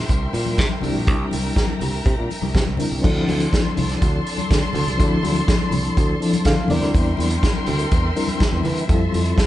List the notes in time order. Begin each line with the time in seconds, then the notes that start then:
Already playing: G3 C4 D4 E4 A#4 C5 E5 G5 C6
0.08 C2, kick, closed hi-hat, muted conga
0.33 A#2, open hi-hat, muted conga
0.45 high conga
0.58 C3, kick, snare, closed hi-hat
0.69 high conga
0.81 C2 G3 C4 D4 E4 G4 A#5, open hi-hat, muted conga, low conga
0.95 A#1
1.07 C2, kick, closed hi-hat
1.31 C2, open hi-hat, high conga
1.56 kick, snare
1.67 high conga
1.80 C2, open hi-hat, muted conga, low conga
2.06 C3, kick, closed hi-hat
2.19 A#2
2.30 open hi-hat, muted conga
2.42 C2, high conga
2.54 C3, kick, snare, closed hi-hat, muted conga
2.66 C2, high conga
2.77 G3 C4 D4 E4 A#4, open hi-hat, muted conga, low conga
2.92 C2
3.02 D2 F3 C4 D4 E4 A4 D5 A5 C6, kick, crash, muted conga
3.28 D2, open hi-hat, muted conga, high conga
3.40 closed hi-hat
3.53 kick, snare, closed hi-hat, muted conga
3.64 high conga
3.77 C2, open hi-hat, low conga
3.89 snare, closed hi-hat
4.02 D2, kick, closed hi-hat, muted conga
4.26 open hi-hat
4.38 closed hi-hat, high conga
4.51 D3, kick, snare, closed hi-hat
4.62 high conga
4.73 D2, open hi-hat, muted conga, low conga
4.87 C2, closed hi-hat
4.97 D2 F3 C4 D4 E4 A4, kick, closed hi-hat, muted conga
5.23 D2, open hi-hat, muted conga, high conga
5.36 closed hi-hat
5.48 kick, snare, closed hi-hat
5.59 high conga
5.71 C2, open hi-hat, muted conga, low conga
5.85 closed hi-hat
5.97 D2, kick, closed hi-hat, muted conga
6.20 F3 C4 D4 E4 A4, open hi-hat
6.33 closed hi-hat, high conga
6.45 D3 F5, kick, snare, closed hi-hat, muted conga
6.56 high conga
6.68 E2 G3 C4 D4 E4 A#4 D5 E5 G5 C6, open hi-hat, muted conga, low conga
6.72 A#4
6.82 D2, closed hi-hat
6.94 E2, kick, closed hi-hat, muted conga
7.17 E2, open hi-hat, muted conga, high conga
7.30 closed hi-hat
7.43 kick, snare, closed hi-hat
7.53 high conga
7.66 D2, open hi-hat, low conga
7.79 closed hi-hat
7.91 E2, kick, closed hi-hat, muted conga
8.15 G3 C4 D4 E4 A#4, open hi-hat, muted conga
8.28 closed hi-hat, high conga
8.40 kick, snare, closed hi-hat, muted conga
8.51 E2, high conga
8.63 E3, open hi-hat, low conga
8.77 closed hi-hat
8.87 F2 G3 C4 E4 F4 A4 A5 C6, kick, closed hi-hat, muted conga
9.13 F2, open hi-hat, high conga
9.25 closed hi-hat
9.38 kick, snare, closed hi-hat